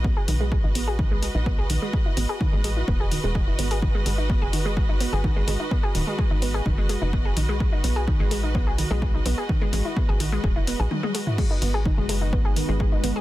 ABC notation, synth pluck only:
X:1
M:4/4
L:1/16
Q:1/4=127
K:G#phr
V:1 name="Synth pluck"
B, G D, G, G, D B, G D, G, G, D B, G D, G, | G, E B, G D, G, G, E B, G D, G, G, E B, G | D, G, G, D B, G D, G, G, D B, G D, G, G, D | B, G D, G, G, D B, G D, G, G, D B, G D, G, |
G, D B, G D, G, G, D B, G D, G, G, D B, G | D, G, G, E B, G D, G, G, E B, G D, G, G, E | G, D B, G D, G, G, D B, G D, G, G, D B, G |]